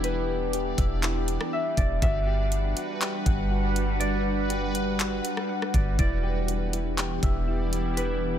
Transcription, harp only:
0.03 2.08 B4 loud
1.53 2.02 E5 medium
1.77 3.62 D5 medium
2.02 3.97 E5 loud
4.00 5.74 D5 loud
5.74 5.99 D5 medium
5.99 7.93 D5 loud
7.97 8.39 B4 loud

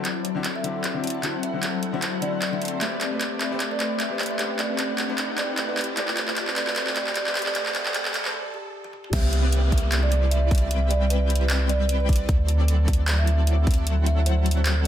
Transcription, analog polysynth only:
0.00 1.02 F#3 medium
0.00 1.02 C4 medium
0.00 1.02 E4 medium
0.00 1.02 A4 medium
0.00 1.02 D5 medium
1.04 1.21 F#3 loud
1.04 1.21 C4 medium
1.04 1.21 E4 medium
1.04 1.21 A4 medium
1.04 1.21 D5 loud
1.23 2.59 F#3 medium
1.23 2.59 C4 medium
1.23 2.59 E4 medium
1.23 2.59 A4 medium
1.23 2.59 F#5 loud
2.61 2.79 F#3 medium
2.61 2.79 C4 medium
2.61 2.79 E4 medium
2.61 2.79 A4 medium
2.61 2.79 C5 loud
2.81 4.17 A3 medium
2.81 4.17 C4 medium
2.81 4.17 G4 medium
2.81 4.17 B4 medium
2.81 4.17 D5 medium
4.19 4.37 A3 loud
4.19 4.37 C4 medium
4.19 4.37 G4 medium
4.19 4.37 B4 medium
4.19 4.37 D5 loud
4.39 5.75 A3 medium
4.39 5.75 C4 medium
4.39 5.75 G4 medium
4.39 5.75 B4 medium
4.39 5.75 F#5 loud
5.77 5.95 A3 medium
5.77 5.95 C4 medium
5.77 5.95 G4 medium
5.77 5.95 B4 medium
5.77 5.95 D5 medium
5.97 7.33 A3 medium
5.97 7.33 C4 medium
5.97 7.33 G4 medium
5.97 7.33 B4 medium
5.97 7.33 D5 medium
7.35 7.53 A3 medium
7.35 7.53 C4 medium
7.35 7.53 G4 medium
7.35 7.53 B4 medium
7.35 7.53 D5 loud
7.55 8.34 A3 loud
7.55 8.34 C4 medium
7.55 8.34 G4 medium
7.55 8.34 B4 medium
7.55 8.34 F#5 loud
9.13 10.49 G3 medium
9.13 10.49 C4 medium
9.13 10.49 E4 medium
9.13 10.49 B4 medium
9.13 10.49 D5 medium
10.51 10.69 G3 loud
10.51 10.69 C4 medium
10.51 10.69 E4 medium
10.51 10.69 B4 medium
10.51 10.69 D5 loud
10.71 12.07 G3 medium
10.71 12.07 C4 medium
10.71 12.07 E4 medium
10.71 12.07 B4 medium
10.71 12.07 G5 loud
12.09 12.27 G3 medium
12.09 12.27 C4 medium
12.09 12.27 E4 medium
12.09 12.27 B4 medium
12.09 12.27 D5 loud
12.29 13.65 F#3 medium
12.29 13.65 C4 medium
12.29 13.65 E4 medium
12.29 13.65 A4 medium
13.67 13.85 F#3 medium
13.67 13.85 C4 medium
13.67 13.85 E4 medium
13.67 13.85 A4 medium
13.67 13.85 D5 loud
13.86 14.87 F#3 loud
13.86 14.87 C4 medium
13.86 14.87 E4 medium
13.86 14.87 A4 medium
13.86 14.87 F#5 loud

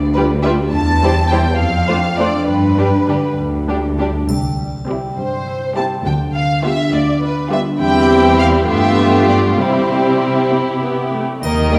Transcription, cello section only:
0.00 0.58 D2 soft
0.73 1.45 E2 soft
1.59 2.33 F2 soft
2.48 3.23 G2 soft
3.38 4.13 D2 soft
4.28 5.00 C2 soft
5.18 5.89 G2 soft
6.06 6.76 D2 soft
6.93 7.63 D2 soft
7.80 8.64 E2 soft
8.68 9.57 G2 soft
9.58 11.22 C3 soft
11.44 11.79 D#3 soft

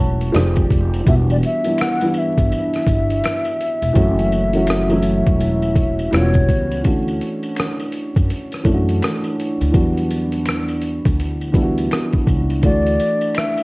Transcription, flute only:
1.09 1.15 E5 loud
1.32 1.37 D5 medium
1.45 1.83 E5 loud
1.81 2.20 F#5 loud
2.18 6.14 E5 medium
6.15 6.82 C#5 medium
12.65 13.39 D5 loud
13.37 13.63 E5 loud

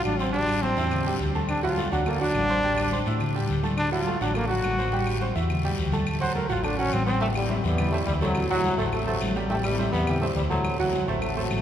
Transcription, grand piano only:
0.00 0.15 F#3 medium
0.00 0.15 F#4 medium
0.00 0.15 F#5 medium
0.20 0.32 C4 medium
0.20 0.32 C5 medium
0.20 0.32 C6 medium
0.34 0.58 G3 medium
0.34 0.58 G4 medium
0.34 0.58 G5 medium
0.63 0.75 C4 medium
0.63 0.75 C5 medium
0.63 0.75 C6 medium
0.78 1.01 E4 medium
0.78 1.01 E5 medium
0.78 1.01 E6 medium
1.06 1.29 G3 medium
1.06 1.30 G4 medium
1.06 1.30 G5 loud
1.35 1.58 A3 medium
1.35 1.58 A4 medium
1.35 1.59 A5 medium
1.63 1.75 F#3 loud
1.63 1.75 F#4 loud
1.63 1.75 F#5 loud
1.77 1.89 A3 medium
1.77 1.89 A4 medium
1.77 1.89 A5 medium
1.92 2.04 F#3 medium
1.92 2.04 F#4 medium
1.92 2.04 F#5 medium
2.07 2.18 A3 medium
2.07 2.18 A4 medium
2.07 2.19 A5 medium
2.21 2.44 F#3 medium
2.21 2.44 F#4 medium
2.21 2.45 F#5 medium
2.50 2.61 C4 medium
2.50 2.61 C5 medium
2.50 2.62 C6 medium
2.64 2.87 G3 medium
2.64 2.87 G4 medium
2.64 2.87 G5 medium
2.92 3.04 C4 medium
2.92 3.04 C5 medium
2.92 3.04 C6 medium
3.07 3.30 E4 medium
3.07 3.30 E5 medium
3.07 3.31 E6 medium
3.35 3.58 G3 medium
3.35 3.59 G4 loud
3.35 3.59 G5 medium
3.63 3.87 A3 medium
3.63 3.87 A4 medium
3.63 3.87 A5 medium
3.92 4.04 F#3 loud
3.92 4.04 F#4 medium
3.92 4.04 F#5 loud
4.06 4.18 A3 medium
4.06 4.18 A4 medium
4.06 4.19 A5 medium
4.21 4.33 F#3 medium
4.21 4.33 F#4 medium
4.21 4.33 F#5 medium
4.35 4.47 A3 medium
4.35 4.47 A4 medium
4.35 4.47 A5 medium
4.50 4.73 F#3 medium
4.50 4.73 F#4 medium
4.50 4.74 F#5 medium
4.79 4.90 C4 medium
4.79 4.90 C5 medium
4.79 4.90 C6 medium
4.92 5.16 G3 medium
4.92 5.16 G4 medium
4.92 5.16 G5 medium
5.21 5.33 C4 medium
5.21 5.33 C5 medium
5.21 5.33 C6 medium
5.35 5.59 E4 medium
5.35 5.59 E5 medium
5.35 5.59 E6 medium
5.64 5.88 G3 medium
5.64 5.88 G4 medium
5.64 5.88 G5 medium
5.93 6.16 A3 medium
5.93 6.16 A4 medium
5.93 6.16 A5 medium
6.21 6.33 F#3 loud
6.21 6.33 F#4 loud
6.21 6.33 F#5 loud
6.35 6.47 A3 medium
6.35 6.47 A4 medium
6.35 6.47 A5 medium
6.49 6.61 F#3 medium
6.49 6.61 F#4 medium
6.49 6.61 F#5 medium
6.64 6.76 A3 medium
6.64 6.76 A4 medium
6.64 6.76 A5 medium
6.79 7.02 F#3 medium
6.79 7.02 F#4 medium
6.79 7.02 F#5 medium
7.07 7.19 C4 medium
7.07 7.19 C5 medium
7.07 7.19 C6 medium
7.21 7.45 G3 medium
7.21 7.45 G4 medium
7.21 7.45 G5 medium
7.50 7.73 C4 medium
7.50 7.74 C5 medium
7.50 7.74 E5 medium
7.79 7.91 G3 medium
7.79 7.91 G4 medium
7.79 7.91 G5 medium
7.93 8.17 C4 medium
7.93 8.17 C5 medium
7.93 8.17 E5 medium
8.22 8.45 A3 medium
8.22 8.45 A4 medium
8.22 8.45 C5 medium
8.51 8.74 F#3 loud
8.51 8.74 F#4 loud
8.51 8.74 F#5 loud
8.79 9.02 A3 medium
8.79 9.02 A4 medium
8.79 9.03 C5 medium
9.07 9.31 A3 medium
9.07 9.31 A4 medium
9.07 9.31 C5 medium
9.36 9.48 G3 loud
9.36 9.48 G4 medium
9.36 9.48 G5 medium
9.50 9.74 G3 medium
9.50 9.74 G4 medium
9.50 9.74 G5 medium
9.79 10.02 C4 medium
9.79 10.02 C5 medium
9.79 10.03 E5 medium
10.08 10.19 G3 medium
10.08 10.20 G4 medium
10.08 10.20 G5 medium
10.22 10.45 C4 medium
10.22 10.45 C5 medium
10.22 10.46 E5 medium
10.50 10.74 A3 medium
10.50 10.74 A4 medium
10.50 10.74 C5 medium
10.79 11.02 F#3 loud
10.79 11.03 F#4 loud
10.79 11.03 F#5 loud
11.08 11.31 A3 medium
11.08 11.31 A4 medium
11.08 11.31 C5 medium
11.37 11.60 A3 medium
11.37 11.60 A4 medium
11.37 11.60 C5 medium

